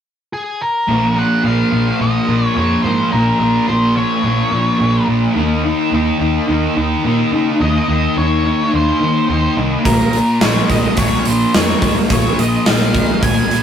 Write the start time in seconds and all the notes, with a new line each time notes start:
0.33 G#4
0.62 A#4
0.87 A#1 A#2 F3 A#3
1.15 F3 A#3 F#5
1.44 A#1 A#2 F3 A#3 F5
1.72 A#1 F3 A#3
2.00 A#1 A#2 F3 A#3 D#5
2.27 A#1 F3 A#3
2.46 C#5
2.55 F2 A#2 F3 A#3 C#5
2.83 G#2 F3 A#3 C5
3.12 A#1 A#2 F3 A#3 A#4
3.40 A#1 F3 A#3
3.67 A#1 A#2 F3 A#3 C5
3.96 F3 A#3 C#5
4.23 A#1 A#2 F3 A#3
4.51 A#2 F3 A#3
4.79 A#1 A#2 F3 A#3
5.07 A#1 F3 A#3
5.34 D#2 D#3 A#3 D#4
5.63 A#3 D#4
5.91 D#2 D#3 A#3 D#4
6.19 D#2 A#3 D#4
6.47 D#2 D#3 A#3 D#4
6.75 D#2 A#3 D#4
7.03 A#2 D#3 A#3 D#4
7.32 C#3 A#3 D#4
7.60 D#2 D#3 A#3 D#4 D#5
7.88 D#2 A#3 D#4
8.17 D#2 D#3 A#3 D#4 C#5
8.44 A#3 D#4
8.72 D#2 D#3 A#3 D#4 C5
9.00 D#3 A#3 D#4
9.29 D#2 D#3 A#3 D#4
9.57 C2 A#3 D#4
9.85 A#1 A#2 F3 A#3 A#4, kick, open hi-hat
10.12 F3 A#3, open hi-hat
10.41 A#1 A#2 F3 A#3 C#5, snare, open hi-hat
10.69 A#1 F3 A#3 D#5, kick, snare, open hi-hat
10.97 A#1 A#2 F3 C#5, kick, open hi-hat
11.01 A#3
11.25 A#1 F3 A#3 C5, open hi-hat
11.54 F2 A#2 F3 A#3 C#5, snare, open hi-hat
11.82 G#2 F3 A#3, kick, open hi-hat
12.10 A#1 A#2 F3 A#3 C#5, kick, open hi-hat
12.37 A#1 F3 A#3 D#5, open hi-hat
12.66 A#1 A#2 F3 A#3 F5, snare, open hi-hat
12.81 snare
12.94 F3 A#3, kick, open hi-hat
13.21 A#1 A#2 F3 A#3 G#5, kick, open hi-hat
13.50 A#2 F3 A#3, open hi-hat